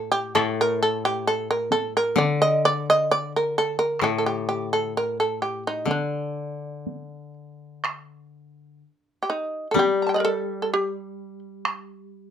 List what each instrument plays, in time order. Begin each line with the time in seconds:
Already playing: koto A2
0.12 shamisen G4
0.35 koto A2, shamisen A4, taiko rim
0.61 shamisen A#4
0.83 shamisen A4
1.05 shamisen G4
1.27 shamisen A4
1.51 shamisen A#4
1.71 shamisen A4, taiko high
1.97 shamisen A#4
2.16 koto D3, shamisen D5, taiko high
2.42 shamisen D#5
2.65 shamisen D5
2.90 shamisen D#5
3.11 shamisen D5
3.36 shamisen A#4
3.58 shamisen A4
3.79 shamisen A#4
3.99 koto A2, taiko rim
4.04 shamisen A4
4.18 shamisen A4
4.26 shamisen G4
4.49 shamisen G4
4.73 shamisen A4
4.97 shamisen A#4
5.20 shamisen A4
5.42 shamisen G4
5.67 shamisen D#4
5.85 koto D3, taiko high
5.91 shamisen D4
6.87 taiko high
7.85 taiko rim
9.23 shamisen G4
9.30 shamisen D#4
9.71 koto G3, shamisen A4
9.76 shamisen G4, taiko high
10.02 shamisen A#5
10.07 shamisen G5 A5
10.14 shamisen D5 D#5
10.20 shamisen A#4
10.25 shamisen A4
10.62 shamisen A4
10.74 shamisen G4
11.65 taiko rim